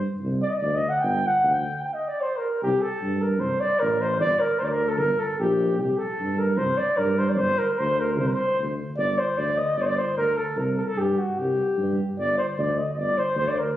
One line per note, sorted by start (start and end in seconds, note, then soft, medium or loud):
0.22 0.44 C2 medium
0.42 0.50 D5 loud
0.49 0.59 D#5 medium
0.57 0.77 D5 medium
0.62 0.84 D2 loud
0.75 0.90 D#5 medium
0.89 1.02 F#5 medium
1.01 1.24 G1 medium
1.01 1.28 G5 loud
1.26 1.53 F#5 loud
1.43 1.65 D2 loud
1.52 1.79 G5 medium
1.80 1.95 G5 medium
1.93 2.09 D#5 medium
2.08 2.23 D5 medium
2.21 2.39 C5 loud
2.37 2.62 A#4 medium
2.62 2.73 C2 medium
2.62 2.83 G4 loud
2.81 3.23 A4 loud
3.02 3.43 G2 medium
3.21 3.41 A#4 medium
3.40 3.53 C2 medium
3.40 3.62 C5 medium
3.60 3.81 D5 loud
3.79 4.23 A1 medium
3.79 4.03 A#4 loud
4.01 4.20 C5 medium
4.21 4.32 G1 medium
4.21 4.41 D5 loud
4.40 4.60 A#4 loud
4.59 5.02 D2 medium
4.59 4.66 C5 loud
4.64 4.66 D5 medium
4.69 4.90 A#4 loud
4.88 4.99 A4 medium
4.98 5.12 G1 medium
4.98 5.21 A#4 loud
5.19 5.39 A4 medium
5.39 5.81 A#1 loud
5.39 5.77 G4 loud
5.78 5.91 C2 medium
5.78 5.99 G4 medium
5.98 6.40 A4 loud
6.20 6.62 G2 medium
6.39 6.59 A#4 medium
6.57 6.71 C2 medium
6.57 6.79 C5 loud
6.77 6.99 D5 medium
6.97 7.42 G2 loud
6.97 7.20 A#4 loud
7.18 7.31 C5 loud
7.29 7.39 D5 medium
7.38 7.51 G1 medium
7.38 7.60 C5 loud
7.58 7.80 A#4 medium
7.79 8.20 D2 medium
7.79 8.02 C5 loud
8.00 8.19 A#4 medium
8.19 8.30 C2 loud
8.19 8.29 C5 medium
8.27 8.34 A#4 medium
8.33 8.59 C5 loud
8.58 8.80 D2 medium
8.97 9.20 G1 medium
8.97 9.20 D5 loud
9.18 9.39 C5 medium
9.37 9.59 D2 loud
9.37 9.59 D5 loud
9.57 9.79 D#5 medium
9.77 9.99 G1 medium
9.77 9.83 D5 loud
9.82 9.88 C5 medium
9.87 9.96 D5 loud
9.97 10.16 C5 medium
10.17 10.39 D2 medium
10.17 10.39 A#4 loud
10.37 10.59 A4 medium
10.56 10.79 C2 medium
10.56 10.78 A#4 medium
10.77 10.83 A4 medium
10.81 10.88 A#4 medium
10.87 10.99 A4 loud
10.97 11.19 G2 loud
10.97 11.19 G4 medium
11.18 11.40 F#4 medium
11.37 11.59 C2 medium
11.37 11.98 G4 medium
11.78 12.00 G2 loud
12.17 12.39 G1 medium
12.17 12.36 D5 loud
12.38 12.47 C5 medium
12.58 12.79 D2 loud
12.58 12.79 D5 medium
12.77 12.92 D#5 medium
12.93 13.18 G1 medium
12.93 13.00 D#5 medium
12.98 13.19 D5 loud
13.18 13.37 C5 medium
13.36 13.58 D2 loud
13.36 13.50 C5 loud
13.48 13.60 D5 medium
13.58 13.77 A#4 medium